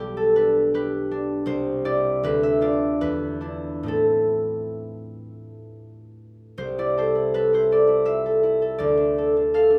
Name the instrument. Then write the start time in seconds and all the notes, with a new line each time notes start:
harp
Already playing: B1 G3 A4 D5
0.00 G4
0.17 A4
0.36 D4 B4
0.74 G4 B4
1.11 D4
1.46 C2 C5
1.85 E4 G4 D5
2.23 D2 B4
2.43 E5
2.61 D4 F4 D5
3.01 E2 B4
3.41 D4 E4
3.83 A2 A3 C4 E4
3.88 A4
6.58 C2 C5
6.78 E4 D5
6.98 A4 C5
7.15 E4
7.34 A4 B4
7.53 E4 C5
7.71 A4 D5
7.87 E4
8.05 F4 E5
8.26 A4
8.43 E4
8.62 A4
8.78 D2 D5
8.97 D4
9.18 A4
9.37 D4
9.54 A4 F5
9.70 D4